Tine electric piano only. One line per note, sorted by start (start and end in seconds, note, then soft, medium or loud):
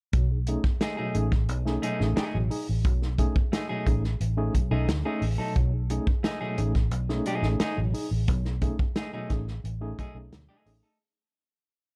0.14 0.29 B2 medium
0.14 0.29 F#3 medium
0.31 0.38 D#4 soft
0.31 0.38 G#4 soft
0.48 0.63 A3 medium
0.48 0.63 C#4 medium
0.48 0.63 D#4 medium
0.48 0.63 G#4 medium
0.82 0.88 D#4 soft
0.82 0.88 G#4 soft
0.99 1.14 B2 medium
0.99 1.14 F#3 medium
1.15 1.30 A3 medium
1.15 1.30 C#4 medium
1.15 1.30 D#4 medium
1.15 1.30 G#4 medium
1.65 1.81 A3 medium
1.65 1.81 C#4 medium
1.65 1.81 D#4 medium
1.65 1.82 G#4 medium
1.83 1.98 B2 medium
1.83 1.98 F#3 medium
2.00 2.15 A3 medium
2.00 2.15 C#4 medium
2.00 2.15 D#4 medium
2.00 2.15 G#4 medium
2.16 2.32 D#4 medium
2.16 2.32 G#4 medium
2.34 2.49 B2 medium
2.34 2.49 F#3 medium
2.50 2.66 D#4 medium
2.50 2.66 G#4 medium
2.85 3.00 B2 medium
2.85 3.00 F#3 medium
3.02 3.09 D#4 soft
3.02 3.09 G#4 soft
3.19 3.34 A3 medium
3.19 3.34 C#4 medium
3.19 3.34 D#4 medium
3.19 3.34 G#4 medium
3.53 3.60 D#4 soft
3.53 3.60 G#4 soft
3.70 3.85 B2 medium
3.70 3.85 F#3 medium
3.86 4.02 A3 medium
3.86 4.02 C#4 medium
3.86 4.02 D#4 medium
3.86 4.02 G#4 medium
4.37 4.53 A3 medium
4.37 4.53 C#4 medium
4.37 4.53 D#4 medium
4.37 4.53 G#4 medium
4.55 4.70 B2 medium
4.55 4.70 F#3 medium
4.71 4.87 A3 medium
4.71 4.87 C#4 medium
4.71 4.87 D#4 medium
4.71 4.87 G#4 medium
5.06 5.21 A3 medium
5.06 5.21 C#4 medium
5.06 5.21 D#4 medium
5.06 5.21 G#4 medium
5.39 5.54 B2 medium
5.39 5.54 F#3 medium
5.55 5.71 B2 medium
5.55 5.71 F#3 medium
5.73 5.80 D#4 soft
5.73 5.80 G#4 soft
5.90 6.06 A3 medium
5.90 6.06 C#4 medium
5.90 6.06 D#4 medium
5.90 6.06 G#4 medium
6.24 6.31 D#4 soft
6.24 6.31 G#4 soft
6.41 6.57 B2 medium
6.41 6.57 F#3 medium
6.58 6.73 A3 medium
6.58 6.73 C#4 medium
6.58 6.74 D#4 medium
6.58 6.74 G#4 medium
7.09 7.25 A3 medium
7.09 7.25 C#4 medium
7.09 7.25 D#4 medium
7.09 7.25 G#4 medium
7.26 7.42 B2 medium
7.26 7.42 F#3 medium
7.43 7.58 A3 medium
7.43 7.58 C#4 medium
7.43 7.58 D#4 medium
7.43 7.59 G#4 medium
7.60 7.75 D#4 medium
7.60 7.76 G#4 medium
7.76 7.92 B2 medium
7.76 7.92 F#3 medium
7.94 8.09 D#4 medium
7.94 8.10 G#4 medium
8.28 8.44 B2 medium
8.28 8.44 F#3 medium
8.46 8.52 D#4 soft
8.46 8.52 G#4 soft
8.62 8.77 A3 medium
8.62 8.77 C#4 medium
8.62 8.77 D#4 medium
8.62 8.78 G#4 medium
8.96 9.03 D#4 soft
8.96 9.03 G#4 soft
9.13 9.29 B2 medium
9.13 9.29 F#3 medium
9.30 9.45 A3 medium
9.30 9.45 C#4 medium
9.30 9.46 D#4 medium
9.30 9.46 G#4 medium
9.81 9.96 A3 medium
9.81 9.97 C#4 medium
9.81 9.97 D#4 medium
9.81 9.97 G#4 medium
9.98 10.13 B2 medium
9.98 10.13 F#3 medium
10.15 10.30 A3 medium
10.15 10.30 C#4 medium
10.15 10.30 D#4 medium
10.15 10.31 G#4 medium
10.32 10.48 B2 medium
10.32 10.48 F#3 medium
10.66 10.81 A3 medium
10.66 10.81 C#4 medium
10.66 10.82 D#4 medium
10.66 10.82 G#4 medium
10.83 10.90 D#4 soft
10.83 10.90 G#4 soft